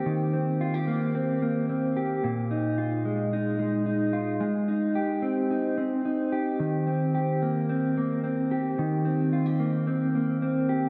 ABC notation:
X:1
M:4/4
L:1/16
Q:1/4=110
K:Eb
V:1 name="Clean electric guitar"
[E,B,CG]2 C2 F G B,2 C2 B,2 C2 G2 | B,,2 E2 F2 A,2 E2 A,2 E2 F2 | A,2 E2 G2 C2 E2 C2 E2 G2 | E,2 C2 G2 B,2 C2 B,2 C2 G2 |
E,2 C2 F G B,2 C2 B,2 C2 G2 |]